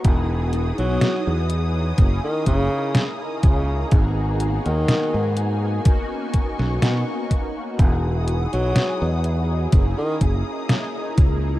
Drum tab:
HH |x-xxx-x-x-x-x-x-|x-xxx-x-x-x-x-x-|x-xxx-x-x-x-x-x-|
SD |----o-------o---|----o------oo---|----o-------o---|
BD |o-------o-o---o-|o-------o-o---o-|o-------o-o---o-|